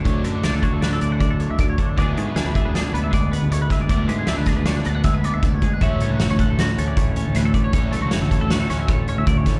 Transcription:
<<
  \new Staff \with { instrumentName = "Clean electric guitar" } { \time 5/4 \key e \mixolydian \tempo 4 = 156 cis''8 a'16 fis'16 d''16 a'16 cis''16 a'16 b'16 a'16 d''16 fis''16 d''16 a'16 cis''16 e''16 d''16 cis''8 a'16 | d''8 cis''16 b'16 gis'16 b'16 e''16 b'16 gis'8 b'16 e''16 d''8 b'8 cis''16 b'16 e''16 d''16 | d''8 b'16 gis'16 e''16 b'16 d''16 b'16 cis''16 b'16 d''16 fis''16 e''16 b'16 d''16 e''16 d''16 cis''8 b'16 | e''8 cis''16 b'16 a'16 cis''16 fis''16 a'16 fis'8 a'16 d''16 cis''8 a'8 b'16 a'16 d''16 cis''16 |
cis''8 a'16 fis'16 cis''16 a'16 cis''16 a'16 b'16 a'16 cis''16 e''16 cis''16 a'16 cis''16 e''16 d''16 cis''8 a'16 | }
  \new Staff \with { instrumentName = "Clean electric guitar" } { \time 5/4 \key e \mixolydian << { r4 d'8 fis'8 d'2. | <gis b d' gis'>4 d'8 gis'8 d'8 b4 b4. | r4 d'8 gis'8 d'8 b4 b4. | <a, cis' fis'>4 fis'8 a'8 fis'8 cis'4 cis'4. |
r4 fis'8 a'8 fis'8 cis'4 cis'4. | } \\ { <d, d>8 d2~ d8 d4 d,8 d8 | d,8 gis2~ gis8 gis4 d,8 gis8 | d,8 gis2~ gis8 gis4 d,8 gis8 | d,8 a,2~ a,8 a,4 d,8 a,8 |
d,8 a,2~ a,8 a,4 d,8 a,8 | } >> }
  \new Staff \with { instrumentName = "Overdriven electric guitar" } { \time 5/4 \key e \mixolydian <d fis a d'>1~ <d fis a d'>4 | <d gis b e'>1~ <d gis b e'>4 | <d gis b e'>1~ <d gis b e'>4 | <a, e a cis' e'>1~ <a, e a cis' e'>4 |
<a, e a cis' e'>1~ <a, e a cis' e'>4 | }
  \new Staff \with { instrumentName = "Fingered electric bass" } { \clef bass \time 5/4 \key e \mixolydian d,8 fis,8 cis,16 d,8 d,8. d,4~ d,16 d,16 d,8 r8 | d,8 gis,8 d,16 d,8 d,8. d,4~ d,16 d,16 d,8 r8 | d,8 gis,8 d,16 d,8 d,8. d,4~ d,16 d,16 d,8 r8 | d,8 cis,8 fis,,16 d,8 d,8. d,4~ d,16 d,16 d,8 r8 |
d,8 cis,8 fis,,16 d,8 d,8. d,4~ d,16 d,16 d,8 r8 | }
  \new DrumStaff \with { instrumentName = "Drums" } \drummode { \time 5/4 <hh bd>8 hh8 <hh sn>8 <hh bd>8 <hh sn>8 hh8 <hh bd>8 hh8 <hh bd>8 <hh bd>8 | <hh bd>8 hh8 <hh sn>8 <hh bd>8 <hh sn>8 hh8 <hh bd>8 hh8 hh8 <hh bd sn>8 | <hh bd>8 hh8 <hh sn>8 <hh bd sn>8 <hh sn>8 hh8 <hh bd sn>8 hh8 <hh bd>8 <hh bd>8 | <hh bd>8 hh8 <hh sn>8 <hh bd>8 <hh sn>8 hh8 <hh bd>8 hh8 <hh sn>8 <hh bd>8 |
<hh bd>8 hh8 <hh sn>8 <hh bd>8 <hh sn>8 <hh sn>8 <hh bd>8 hh8 <hh bd>8 <hh bd sn>8 | }
>>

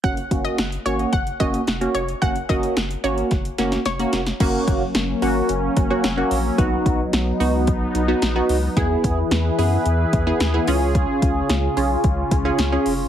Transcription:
<<
  \new Staff \with { instrumentName = "Synth pluck" } { \time 4/4 \key fis \major \tempo 4 = 110 fis''16 r8 dis''16 r8 cis''8 fis''8 dis''16 r8. cis''16 r16 | fis''8 dis''8 r8 cis''4 r8 cis''8. r16 | r1 | r1 |
r1 | r1 | }
  \new Staff \with { instrumentName = "Analog polysynth" } { \time 4/4 \key fis \major <ais cis' fis'>16 r16 <ais cis' fis'>8 r8 <ais cis' fis'>8 r8 <ais cis' fis'>8 r16 <ais cis' fis'>8 r16 | <ais cis' fis'>16 r16 <ais cis' fis'>8 r8 <ais cis' fis'>8 r8 <ais cis' fis'>8 r16 <ais cis' fis'>8 r16 | <ais cis' fis'>8. r8. <ais cis' fis'>8 r8 <cis' fis'>16 <ais cis' fis'>16 r16 <ais cis' fis'>8 r16 | <b dis' fis'>8. r8. <b dis' fis'>8 r8 <dis' fis'>16 <b dis' fis'>16 r16 <b dis' fis'>8 r16 |
<b e' gis'>8. r8. <b e' gis'>8 r8 <e' gis'>16 <b e' gis'>16 r16 <b e' gis'>16 <cis' eis' gis'>8~ | <cis' eis' gis'>4 r8 <cis' eis' gis'>8 r8 <eis' gis'>16 <cis' eis' gis'>16 r16 <cis' eis' gis'>8 r16 | }
  \new Staff \with { instrumentName = "Analog synth pad" } { \time 4/4 \key fis \major << { r1 | r1 | <ais cis'>1 | <b dis'>1 |
<e gis' b'>2.~ <e gis' b'>8 <cis eis'>8~ | <cis eis'>1 | } \\ { r1 | r1 | fis1~ | fis1 |
e'2.~ e'8 cis'8~ | cis'1 | } >> }
  \new Staff \with { instrumentName = "Analog synth bass" } { \clef bass \time 4/4 \key fis \major fis,,8 fis,,8 fis,,8 gis,,8 fis,,8 fis,,8 eis,,8 eis,,8 | fis,,8 fis,,8 fis,,8 gis,,8 fis,,8 fis,,8 eis,,8 eis,,8 | fis,,8 fis,,8 fis,,8 gis,,8 fis,,8 fis,,8 eis,,8 ais,,8 | b,,8 b,,8 b,,8 cis,8 b,,8 b,,8 ais,,8 cis,8 |
e,8 e,8 e,8 fis,8 e,8 e,8 dis,8 cis,8~ | cis,8 cis,8 cis,8 b,,8 cis,8 cis,8 cis,8 eis,,8 | }
  \new DrumStaff \with { instrumentName = "Drums" } \drummode { \time 4/4 <hh bd>16 hh16 <hh bd>16 hh16 <hh sn>16 hh16 hh16 hh16 <hh bd>16 hh16 <hh bd>16 hh16 <hh sn>16 hh16 hh16 hh16 | <hh bd>16 hh16 <hh bd>16 hh16 <hh sn>16 hh16 hh16 hh16 <hh bd sn>16 hh16 <hh sn>16 <hh sn>16 <hh sn>16 hh16 <hh sn>16 <hh sn>16 | <cymc hh bd>8 <hh bd>8 <hh sn>8 hho8 hh8 <hh bd>8 <hh sn>8 hho8 | <hh bd>8 <hh bd>8 <hh sn>8 hho8 <hh bd>8 hh8 <hh sn>8 hho8 |
<hh bd>8 <hh bd>8 <hh sn>8 hho8 hh8 <hh bd>8 <hh sn>8 hho8 | <hh bd>8 <hh bd>8 <hh sn>8 hho8 <hh bd>8 <hh bd>8 <hh sn>8 hho8 | }
>>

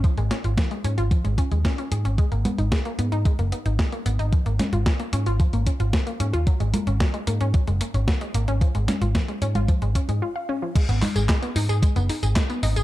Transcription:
<<
  \new Staff \with { instrumentName = "Synth arpeggio sound" } { \time 4/4 \key cis \mixolydian \tempo 4 = 112 eis16 gis16 cis'16 eis'16 eis16 gis16 cis'16 eis'16 eis16 gis16 cis'16 gis16 cis'16 cis'16 gis'16 cis'16 | gis16 ais16 b16 dis'16 gis16 ais16 b16 dis'16 gis16 ais16 b16 dis'16 gis16 ais16 b16 dis'16 | eis16 ais16 cis'16 eis'16 eis16 ais16 cis'16 eis'16 eis16 ais16 cis'16 eis'16 eis16 ais16 cis'16 eis'16 | fis16 gis16 ais16 cis'16 fis16 gis16 ais16 cis'16 fis16 gis16 ais16 cis'16 fis16 gis16 ais16 cis'16 |
eis16 gis16 cis'16 eis'16 eis16 gis16 cis'16 eis'16 eis16 gis16 cis'16 gis16 eis'16 eis''16 cis'16 eis16 | gis16 b16 dis'16 gis'16 gis16 b16 dis'16 gis'16 gis16 b16 dis'16 gis'16 gis16 b16 dis'16 gis'16 | }
  \new Staff \with { instrumentName = "Picked electric bass" } { \clef bass \time 4/4 \key cis \mixolydian r16 gis,,16 r16 gis,,16 r8 gis,16 gis,,16 r16 gis,,16 r16 dis,16 r8 gis,16 gis,,16 | r16 gis,,16 r16 gis,,16 r8 gis,16 gis,16 r16 fis,,16 r16 gis,,16 r8 gis,,16 gis,,16 | r16 gis,,16 r16 gis,,16 r8 gis,16 gis,,16 r16 gis,,16 r16 gis,,16 r8 gis,16 dis,16 | r16 gis,,16 r16 gis,,16 r8 gis,16 gis,16 r16 fis,,16 r16 gis,,16 r8 gis,,16 gis,,16 |
r16 gis,,16 r16 gis,,16 r8 gis,16 gis,,16 r16 gis,,16 r16 gis,16 r4 | r16 gis,,16 r16 gis,,16 r8 gis,16 gis,16 r16 fis,,16 r16 gis,,16 r8 gis,,16 gis,,16 | }
  \new DrumStaff \with { instrumentName = "Drums" } \drummode { \time 4/4 <hh bd>16 hh16 <hh sn>16 hh16 <hh bd sn>16 hh16 hh16 hh16 <hh bd>16 hh16 <hh bd>16 hh16 <hh bd sn>16 hh16 hh16 hh16 | <hh bd>16 hh16 <cgho hh>16 hh16 <hh bd sn>16 hh16 hh16 hh16 <hh bd>16 hh16 hh16 hh16 <hh bd sn>16 hh16 hh16 hh16 | <hh bd>16 hh16 <cgho hh sn>16 hh16 <hh bd sn>16 hh16 hh16 hh16 <hh bd>16 hh16 <hh bd>16 hh16 <hh bd sn>16 hh16 hh16 hh16 | <hh bd>16 hh16 <cgho hh>16 hh16 <hh bd sn>16 hh16 hh16 hh16 <hh bd>16 hh16 hh16 hh16 <hh bd sn>16 hh16 hh16 hh16 |
<hh bd>16 hh16 <cgho hh sn>16 hh16 <hh bd sn>16 hh16 hh16 <cgho hh>16 <hh bd>16 hh16 <hh bd>16 hh16 r4 | <cymc hh bd tamb>16 <hh tamb>16 <hc cgho hho>16 <hh tamb>16 <hc hh bd sn tamb>16 <hh tamb>16 hho16 <hh tamb>16 <hh bd tamb>16 <hh tamb>16 hho16 <hh tamb>16 <hc hh bd sn tamb>16 <hh tamb>16 hho16 <hh tamb>16 | }
>>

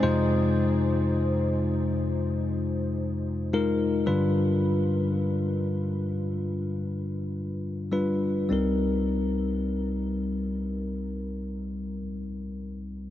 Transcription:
<<
  \new Staff \with { instrumentName = "Tine electric piano" } { \time 4/4 \key c \minor \tempo 4 = 54 <aes ees' f' c''>2 r4. <aes ees' f' bes'>8 | <g d' f' b'>2 r4. <g d' f' b'>8 | <g c' ees' bes'>1 | }
  \new Staff \with { instrumentName = "Tine electric piano" } { \clef bass \time 4/4 \key c \minor <f, c>1 | <g, d>1 | c,1 | }
>>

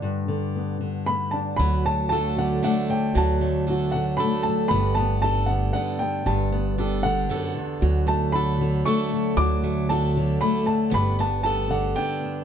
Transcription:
<<
  \new Staff \with { instrumentName = "Upright piano" } { \time 3/4 \key d \major \tempo 4 = 116 r2 b''8 a''8 | b''8 a''8 a''8 fis''8 fis''8 g''8 | a''4 r8 fis''8 b''8 a''8 | b''8 a''8 a''8 fis''8 fis''8 g''8 |
a''4 r8 fis''4 r8 | r8 a''8 b''4 cis'''4 | d'''4 a''4 b''8 a''8 | b''8 a''8 a''8 fis''8 g''4 | }
  \new Staff \with { instrumentName = "Steel-string acoustic guitar" } { \time 3/4 \key d \major r2. | fis8 a8 <a d' a'>4 <a d' a'>4 | fis8 a8 <a d' a'>4 <a d' a'>4 | b8 b8 <b d' a'>4 <b d' a'>4 |
b8 b8 <b d' a'>4 <b d' a'>4 | fis8 a8 <a d' a'>4 <a d' a'>4 | fis8 a8 <a d' a'>4 <a d' a'>4 | b8 b8 <b d' a'>4 <b d' a'>4 | }
  \new Staff \with { instrumentName = "Nylon-string guitar" } { \clef bass \time 3/4 \key d \major << { r4 b4 b8 d'8 | fis'8 fis8 fis'8 fis8 a8 fis8 | fis'8 fis8 fis'8 fis8 a8 fis8 | g'8 b8 g'8 b8 d'8 b8 |
g'8 b8 g'8 b4. | fis'8 fis8 fis'8 fis8 a8 fis8 | fis'8 fis8 fis'8 fis8 a8 fis8 | g'8 b8 g'8 b8 d'8 b8 | } \\ { <g, d>8 d4 d4. | d,4. d4. | d,4. d4. | g,4. d4. |
g,4. d8 fis,8 e,8 | d,4. d4. | d,4. d4. | g,4. d4. | } >> }
  \new Staff \with { instrumentName = "Upright bass" } { \clef bass \time 3/4 \key d \major r2. | d,2 r4 | d,2 r4 | g,,2 r4 |
g,,2 r4 | d,2 r4 | d,2 r4 | g,,2 r4 | }
>>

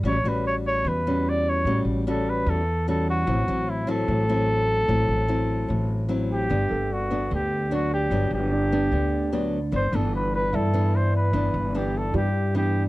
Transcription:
<<
  \new Staff \with { instrumentName = "Flugelhorn" } { \time 4/4 \key g \major \tempo 4 = 149 cis''8 b'8 cis''8 cis''8 b'4 d''8 cis''8~ | cis''8 r8 a'8 b'8 a'4 a'8 fis'8~ | fis'4 e'8 a'2~ a'8~ | a'2. r8 g'8~ |
g'4 fis'4 g'4 fis'8 g'8~ | g'8 g'2. r8 | c''8 a'8 b'8 b'8 a'4 c''8 b'8~ | b'4 g'8 a'8 g'4 g'8. r16 | }
  \new Staff \with { instrumentName = "Grand piano" } { \time 4/4 \key g \major r1 | r1 | r1 | r1 |
r8 a'2. r8 | r4 d'2. | r2 e'2~ | e'4 r4 g'2 | }
  \new Staff \with { instrumentName = "Nylon-string guitar" } { \time 4/4 \key g \major << { <g cis' fis'>8 <g cis' fis'>2 <g cis' fis'>4. | <g cis' fis'>4 <g cis' fis'>4. r8 <g cis' fis'>4 | <fis c' e'>8 <fis c' e'>4 <fis c' e'>4 <fis c' e'>4. | <fis c' e'>4 <fis c' e'>2 <fis c' e'>4 |
<b d'>4 r8 <b d'>4. <fis b d'>4 | <fis b d'>4 r8 <b d'>4. <fis b d'>8 r8 | <e b d'>8 <e b d'>2 <e b d'>4. | <e b d'>4 <e b d'>4. r8 <e b d'>4 | } \\ { a,2 e2 | a,2 e2 | a,2 a,2 | a,2 a,2 |
g,2 d2 | g,2 d2 | g,2 g,2 | g,2 g,2 | } >> }
  \new Staff \with { instrumentName = "Upright bass" } { \clef bass \time 4/4 \key g \major a,,8 a,,4. e,2 | a,,8 a,,4. e,2 | a,,8 a,,4. a,,2 | a,,8 a,,4. a,,2 |
g,,8 g,,4. d,2 | g,,8 g,,4. d,2 | g,,8 g,,4. g,2 | g,,8 g,,4. g,2 | }
>>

